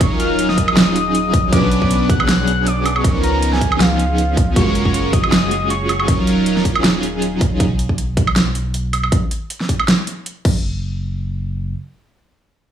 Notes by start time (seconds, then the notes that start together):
Already playing: C#6
0.01 D#1 F#3 C#4 D#4 F4 A#4, kick, closed hi-hat
0.20 F6, closed hi-hat
0.39 closed hi-hat
0.49 D#6, snare
0.58 kick, closed hi-hat
0.68 F#3 C#4 D#4 F4 G#4, high woodblock
0.77 D#6, snare, closed hi-hat
0.96 closed hi-hat
1.15 closed hi-hat
1.34 kick, closed hi-hat
1.52 B1 F#3 B3 C#4 D4 B4 D6, kick, closed hi-hat
1.72 closed hi-hat
1.82 D6, kick
1.91 closed hi-hat
2.09 F#6, kick, closed hi-hat
2.20 F#3 B3 C#4 D4 G#4, high woodblock
2.29 snare, closed hi-hat
2.39 F#6
2.48 closed hi-hat
2.67 D6, closed hi-hat
2.86 closed hi-hat, high woodblock
2.96 C#6, high woodblock
3.04 C#2 F3 B3 C#4 D#4 A#4, kick, closed hi-hat
3.24 A#5, closed hi-hat
3.43 closed hi-hat
3.53 G#5, snare
3.61 kick, closed hi-hat
3.72 F3 B3 C#4 D#4 G#4, high woodblock
3.80 F5, snare, closed hi-hat
3.99 closed hi-hat
4.18 closed hi-hat
4.37 kick, closed hi-hat
4.56 F#1 G#3 C#4 F4 F#4 A#4 C#6, kick, closed hi-hat
4.75 closed hi-hat
4.85 C#6, kick
4.94 closed hi-hat
5.13 D#6, kick, closed hi-hat
5.24 G#3 C#4 F4 F#4 G#4, high woodblock
5.32 snare, closed hi-hat
5.42 D#6
5.51 closed hi-hat
5.70 C#6, closed hi-hat
5.89 closed hi-hat, high woodblock
6.00 C#6, high woodblock
6.08 D#1 F#3 C#4 D#4 F4 A#4, kick, closed hi-hat
6.27 closed hi-hat
6.46 closed hi-hat
6.57 snare
6.65 kick, closed hi-hat
6.75 F#3 C#4 D#4 F4 G#4, high woodblock
6.84 snare, closed hi-hat
7.03 closed hi-hat
7.22 closed hi-hat
7.41 kick, closed hi-hat
7.60 B1, kick, closed hi-hat
7.79 closed hi-hat
7.89 kick
7.98 closed hi-hat
8.17 kick, closed hi-hat
8.27 high woodblock
8.36 snare, closed hi-hat
8.55 closed hi-hat
8.74 closed hi-hat
8.93 closed hi-hat, high woodblock
9.04 high woodblock
9.12 kick, closed hi-hat
9.31 closed hi-hat
9.50 closed hi-hat
9.61 snare
9.69 kick, closed hi-hat
9.80 high woodblock
9.88 snare, closed hi-hat
10.07 closed hi-hat
10.26 closed hi-hat
10.45 F#1, kick, crash